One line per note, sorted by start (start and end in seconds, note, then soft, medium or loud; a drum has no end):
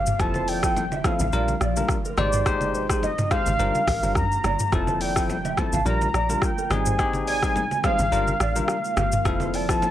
0.00 0.14 G1 loud
0.00 0.17 G4 medium
0.00 0.22 F5 loud
0.06 mid tom medium
0.06 shaker loud
0.19 1.16 F1 loud
0.19 0.60 F3 medium
0.19 2.16 F3 medium
0.19 0.60 C4 medium
0.19 0.60 E4 medium
0.19 0.60 A4 loud
0.19 0.50 A5 loud
0.19 kick loud
0.19 cross-stick loud
0.19 low conga medium
0.19 shaker medium
0.34 0.45 C5 medium
0.34 high conga medium
0.34 shaker soft
0.48 0.60 D5 medium
0.48 1.06 G5 loud
0.48 open hi-hat medium
0.48 shaker medium
0.63 0.83 F3 medium
0.63 0.83 C4 medium
0.63 0.84 E4 medium
0.63 0.84 A4 medium
0.63 kick loud
0.63 cross-stick loud
0.63 shaker medium
0.77 low conga medium
0.77 shaker medium
0.92 1.02 E5 medium
0.92 high conga medium
0.92 shaker soft
1.04 1.26 F3 medium
1.04 1.26 C4 medium
1.04 1.26 E4 medium
1.04 1.26 A4 medium
1.04 1.90 F5 loud
1.04 kick loud
1.04 cross-stick loud
1.04 low conga medium
1.04 shaker medium
1.19 1.30 A1 medium
1.19 1.30 F5 medium
1.19 high conga medium
1.19 shaker loud
1.33 1.55 A#1 loud
1.33 1.54 G3 medium
1.33 1.54 D4 medium
1.33 1.54 F4 medium
1.33 4.69 G4 medium
1.33 1.54 A#4 loud
1.33 1.45 D5 medium
1.33 shaker medium
1.48 high conga medium
1.48 shaker medium
1.61 1.83 A#1 medium
1.61 1.73 D5 medium
1.61 cross-stick medium
1.61 shaker medium
1.76 1.97 G3 medium
1.76 1.97 D4 medium
1.76 1.97 F4 medium
1.76 1.97 A#4 medium
1.76 1.87 A#4 medium
1.76 high conga medium
1.76 shaker medium
1.89 kick loud
1.89 cross-stick loud
1.89 shaker medium
2.05 2.15 A#4 medium
2.05 shaker medium
2.17 3.19 G#1 loud
2.17 2.44 G#3 medium
2.17 2.44 D#4 medium
2.17 2.44 G4 medium
2.17 2.44 C5 loud
2.17 2.71 D5 loud
2.17 cross-stick loud
2.17 high conga medium
2.17 low conga medium
2.17 shaker medium
2.33 2.43 C5 medium
2.33 mid tom medium
2.33 shaker loud
2.46 2.86 G#3 medium
2.46 2.86 D#4 medium
2.46 2.86 G4 medium
2.46 2.86 C5 loud
2.46 kick loud
2.46 cross-stick loud
2.46 low conga medium
2.46 shaker medium
2.61 high conga medium
2.61 shaker medium
2.74 2.86 C5 medium
2.74 shaker medium
2.90 3.10 G#3 medium
2.90 3.10 D#4 medium
2.90 3.10 G4 medium
2.90 3.00 G#4 medium
2.90 3.10 C5 medium
2.90 kick loud
2.90 cross-stick loud
2.90 shaker medium
3.03 3.29 D#5 loud
3.03 low conga medium
3.03 shaker medium
3.18 mid tom loud
3.18 high conga medium
3.18 shaker medium
3.31 3.52 G#3 medium
3.31 3.52 D#4 medium
3.31 3.53 G4 medium
3.31 3.43 G#4 medium
3.31 3.53 C5 medium
3.31 4.12 F5 loud
3.31 kick loud
3.31 cross-stick loud
3.31 low conga medium
3.31 shaker medium
3.46 3.57 G#1 medium
3.46 high conga medium
3.46 shaker loud
3.59 3.72 G1 loud
3.59 6.67 F3 medium
3.59 3.81 G3 medium
3.59 3.81 D4 medium
3.59 3.81 F4 medium
3.59 3.81 A#4 loud
3.59 3.71 C5 medium
3.59 shaker medium
3.75 high conga medium
3.75 shaker medium
3.88 4.00 A1 medium
3.88 3.99 A#4 medium
3.88 kick medium
3.88 cross-stick loud
3.88 open hi-hat medium
3.88 shaker medium
4.03 4.17 G1 loud
4.03 4.23 G3 medium
4.03 4.23 D4 medium
4.03 4.23 F4 medium
4.03 4.23 A#4 medium
4.03 4.13 C5 medium
4.03 high conga medium
4.03 shaker medium
4.15 4.38 G2 loud
4.15 4.75 A#5 loud
4.15 kick loud
4.15 cross-stick loud
4.15 shaker medium
4.32 shaker medium
4.44 4.57 G1 loud
4.44 4.56 D5 medium
4.44 cross-stick medium
4.44 high conga medium
4.44 low conga medium
4.44 shaker medium
4.59 mid tom loud
4.59 shaker loud
4.72 5.69 F1 loud
4.72 5.13 F3 loud
4.72 5.13 C4 medium
4.72 5.13 E4 medium
4.72 5.13 A4 loud
4.72 5.01 A5 loud
4.72 kick loud
4.72 cross-stick loud
4.72 low conga medium
4.72 shaker medium
4.87 4.98 C5 medium
4.87 high conga medium
4.87 shaker medium
5.01 5.13 D5 medium
5.01 5.60 G5 loud
5.01 open hi-hat medium
5.01 shaker medium
5.16 5.36 F3 medium
5.16 5.36 C4 medium
5.16 5.36 E4 medium
5.16 5.36 A4 medium
5.16 kick medium
5.16 cross-stick loud
5.16 shaker medium
5.30 low conga medium
5.30 shaker medium
5.45 5.54 E5 medium
5.45 high conga medium
5.45 shaker medium
5.57 5.79 F3 medium
5.57 5.79 C4 medium
5.57 5.79 E4 medium
5.57 5.79 A4 medium
5.57 5.86 A5 loud
5.57 kick loud
5.57 cross-stick loud
5.57 low conga medium
5.57 shaker medium
5.73 5.83 A1 medium
5.73 5.83 F5 medium
5.73 high conga medium
5.73 shaker loud
5.85 6.08 A#1 loud
5.85 6.07 G3 loud
5.85 6.07 D4 medium
5.85 6.07 F4 medium
5.85 6.07 A#4 loud
5.85 5.98 D5 medium
5.85 6.45 A#5 loud
5.85 shaker medium
6.01 high conga medium
6.01 shaker medium
6.14 6.36 A#1 medium
6.14 6.26 D5 medium
6.14 cross-stick medium
6.14 shaker medium
6.29 6.49 G3 medium
6.29 6.49 D4 medium
6.29 6.50 F4 medium
6.29 6.50 A#4 medium
6.29 6.39 A#4 medium
6.29 high conga medium
6.29 shaker medium
6.42 6.73 G5 loud
6.42 kick loud
6.42 cross-stick loud
6.42 shaker medium
6.58 6.68 A#4 medium
6.58 shaker medium
6.70 7.71 G#1 loud
6.70 6.97 G3 medium
6.70 6.97 C4 medium
6.70 6.97 D#4 medium
6.70 6.97 G#4 loud
6.70 7.27 G#5 loud
6.70 cross-stick loud
6.70 high conga medium
6.70 low conga medium
6.70 shaker medium
6.86 6.96 C5 medium
6.86 mid tom medium
6.86 shaker loud
6.99 7.39 C4 medium
6.99 7.39 D#4 medium
6.99 7.39 G4 loud
6.99 7.39 G#4 loud
6.99 kick loud
6.99 cross-stick loud
6.99 low conga medium
6.99 shaker medium
7.13 high conga medium
7.13 shaker medium
7.27 7.39 D5 medium
7.27 7.80 G#5 loud
7.27 open hi-hat medium
7.27 shaker medium
7.43 7.63 G3 medium
7.43 7.63 C4 medium
7.43 7.63 D#4 medium
7.43 7.63 G#4 medium
7.43 7.53 C5 medium
7.43 kick loud
7.43 cross-stick loud
7.43 shaker medium
7.56 low conga medium
7.56 shaker medium
7.71 high conga medium
7.71 shaker soft
7.84 8.05 G3 medium
7.84 8.05 C4 medium
7.84 8.05 D#4 medium
7.84 8.05 G#4 medium
7.84 7.96 C5 medium
7.84 8.94 F5 loud
7.84 kick loud
7.84 cross-stick loud
7.84 low conga medium
7.84 shaker medium
7.99 8.10 G#1 loud
7.99 high conga medium
7.99 shaker loud
8.12 8.34 G1 loud
8.12 9.91 F3 medium
8.12 8.33 G3 loud
8.12 8.34 D4 medium
8.12 8.34 F4 medium
8.12 8.34 A#4 loud
8.12 8.24 D5 medium
8.12 shaker medium
8.27 high conga medium
8.27 shaker medium
8.40 8.63 A1 medium
8.40 8.52 D5 medium
8.40 cross-stick loud
8.40 shaker medium
8.56 8.76 G3 medium
8.56 8.76 D4 medium
8.56 8.76 F4 medium
8.56 8.66 A#4 medium
8.56 8.76 A#4 medium
8.56 high conga medium
8.56 shaker medium
8.68 cross-stick loud
8.68 shaker medium
8.84 shaker medium
8.97 9.19 G1 loud
8.97 9.09 G4 medium
8.97 9.57 F5 loud
8.97 cross-stick loud
8.97 high conga medium
8.97 low conga medium
8.97 shaker medium
9.12 mid tom medium
9.12 shaker loud
9.25 9.91 F1 loud
9.25 9.65 F3 loud
9.25 9.66 C4 medium
9.25 9.66 E4 medium
9.25 9.66 A4 loud
9.25 kick loud
9.25 cross-stick loud
9.25 low conga medium
9.25 shaker medium
9.40 9.50 C5 medium
9.40 high conga medium
9.40 shaker medium
9.54 9.65 D5 medium
9.54 9.91 A5 loud
9.54 open hi-hat medium
9.54 shaker medium
9.69 9.89 F3 medium
9.69 9.89 C4 medium
9.69 9.89 E4 medium
9.69 9.89 A4 medium
9.69 kick medium
9.69 cross-stick loud
9.69 shaker medium
9.82 low conga medium
9.82 shaker medium